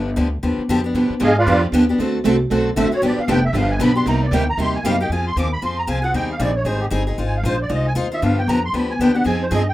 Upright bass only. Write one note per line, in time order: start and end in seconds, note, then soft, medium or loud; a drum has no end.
0.00 0.16 G1 medium
0.17 0.42 D2 loud
0.43 0.57 D#2 medium
0.58 muted upright bass stroke soft
0.69 0.93 F2 medium
0.94 1.08 G2 medium
1.10 muted upright bass stroke soft
1.21 1.46 G#2 loud
1.47 1.72 F2 medium
1.72 1.98 D#2 medium
1.98 2.24 D2 medium
2.25 2.50 C2 loud
2.51 2.76 B1 medium
2.76 2.90 A1 medium
2.92 muted upright bass stroke soft
3.02 3.16 G1 medium
3.17 muted upright bass stroke soft
3.28 3.52 F1 loud
3.53 3.79 G1 loud
3.79 4.05 B1 loud
4.06 4.31 C2 medium
4.31 4.57 D2 loud
4.57 4.83 D#2 medium
4.83 5.09 F#2 medium
5.09 5.35 F2 medium
5.36 5.61 D#2 loud
5.62 5.87 F2 medium
5.87 6.13 C2 medium
6.14 6.39 D#2 medium
6.39 6.64 A#1 loud
6.65 6.91 G#1 medium
6.91 7.17 G1 medium
7.18 7.43 G#1 medium
7.43 7.69 A#1 loud
7.70 7.95 C2 medium
7.95 8.21 D#2 medium
8.22 8.47 G2 medium
8.47 8.72 F2 loud
8.73 8.98 D2 medium
8.99 9.24 D#2 medium
9.25 9.51 F2 medium
9.51 9.74 G2 loud